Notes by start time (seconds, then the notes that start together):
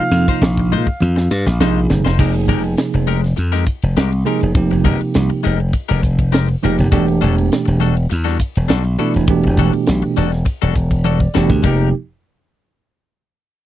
Already playing: C3 F3 A#3 D#4 F4 F5
0.11 F2, muted clean electric guitar stroke, hi-hat pedal, ride
0.28 D#4 F4 C5, kick, snare, ride
0.42 A#1, snare, ride
0.57 muted clean electric guitar stroke, kick
0.72 A#2 G#3 D#4 F4 C5, hi-hat pedal, ride
0.87 muted slap bass stroke, muted clean electric guitar stroke, kick
1.00 F2, high tom
1.16 muted clean electric guitar stroke, snare
1.30 G2, muted clean electric guitar stroke, hi-hat pedal
1.46 A#1, muted clean electric guitar stroke, snare
1.60 A#1 C3 F3 G#3 A#3 D#4 F4 G#4 C5, snare
1.89 G1, muted clean electric guitar stroke, snare, hi-hat pedal
2.05 F1 D#4 F4 C5, snare
2.18 F1 C3 F3 G#3 A#3 D#4 G4 G#4 A#4, kick, crash
2.35 muted clean electric guitar stroke, ride
2.48 F1 G#3 D#4 G4 A#4, hi-hat pedal
2.64 muted clean electric guitar stroke, ride
2.77 snare, hi-hat pedal, ride
2.94 F1, muted clean electric guitar stroke, ride
3.07 G#3 D#4 G4 A#4, hi-hat pedal
3.22 muted clean electric guitar stroke, snare, ride
3.36 F2, muted clean electric guitar stroke, hi-hat pedal, ride
3.52 G#3 D#4 G4 A#4, snare, ride
3.67 muted slap bass stroke, kick, hi-hat pedal
3.82 F1, ride
3.97 C2 G#3 D#4 G4 A#4, snare, hi-hat pedal, ride
4.11 muted clean electric guitar stroke, ride
4.25 C3 F3 G#3 A#3 D#4 G4 G#4 A#4, hi-hat pedal
4.41 F1, muted clean electric guitar stroke, ride
4.55 C3 F3 A#3 D#4 G4, kick, hi-hat pedal, ride
4.71 F1, muted clean electric guitar stroke, ride
4.84 F1 G#3 D#4 G4 A#4, kick, hi-hat pedal
5.01 muted slap bass stroke, muted clean electric guitar stroke, ride
5.14 C2, snare, hi-hat pedal, ride
5.30 muted clean electric guitar stroke, ride
5.43 F1 G#3 D#4 G4 A#4, hi-hat pedal
5.60 muted clean electric guitar stroke, ride
5.73 muted clean electric guitar stroke, kick, hi-hat pedal, ride
5.89 F1 G#3 D#4 G4 A#4, ride
6.02 muted clean electric guitar stroke, kick, hi-hat pedal
6.19 kick, ride
6.32 G#3 D#4 G4 A#4, snare, hi-hat pedal, ride
6.48 muted clean electric guitar stroke, ride
6.63 F1 C3 F3 G#3 A#3 D#4 G4 A#4, hi-hat pedal
6.78 F1, muted clean electric guitar stroke, snare, ride
6.92 E1 B2 E3 G3 A3 D4 F#4 G4 A4, kick, hi-hat pedal, ride
7.07 muted clean electric guitar stroke, ride
7.21 E1 G3 D4 F#4 A4, hi-hat pedal
7.37 muted clean electric guitar stroke, ride
7.52 snare, hi-hat pedal, ride
7.66 E1, muted clean electric guitar stroke, ride
7.80 G3 D4 F#4 A4, snare, hi-hat pedal
7.96 muted clean electric guitar stroke, ride
8.10 E2, muted clean electric guitar stroke, hi-hat pedal, ride
8.24 G3 D4 F#4 A4, snare, ride
8.40 muted slap bass stroke, kick, hi-hat pedal
8.55 E1, ride
8.68 B1 G3 D4 F#4 A4, snare, hi-hat pedal, ride
8.84 muted clean electric guitar stroke, ride
8.98 B2 E3 G3 A3 D4 E4 F#4 A4, hi-hat pedal
9.14 E1, muted clean electric guitar stroke, snare, ride
9.27 B2 E3 A3 D4 G4, kick, hi-hat pedal, ride
9.43 E1, muted clean electric guitar stroke, ride
9.57 E1 G3 D4 F#4 A4, kick, hi-hat pedal
9.73 muted clean electric guitar stroke, ride
9.86 B1, snare, hi-hat pedal, ride
10.02 muted clean electric guitar stroke, ride
10.16 E1 G3 D4 F#4 A4, snare, hi-hat pedal
10.32 muted clean electric guitar stroke, snare, ride
10.45 muted clean electric guitar stroke, kick, hi-hat pedal, ride
10.62 E1 G3 D4 F#4 A4, ride
10.75 muted clean electric guitar stroke, kick, hi-hat pedal
10.91 kick, ride
11.04 G3 D4 F#4 A4 D5, hi-hat pedal, high tom
11.20 muted clean electric guitar stroke, kick
11.34 E1 B2 E3 G3 A3 D4 F#4 G4 A4, snare, hi-hat pedal
11.50 D2, muted clean electric guitar stroke, kick
11.63 F1 C3 F3 G#3 A#3 D#4 G4 A#4, kick, floor tom, ride bell
11.67 D#4 G4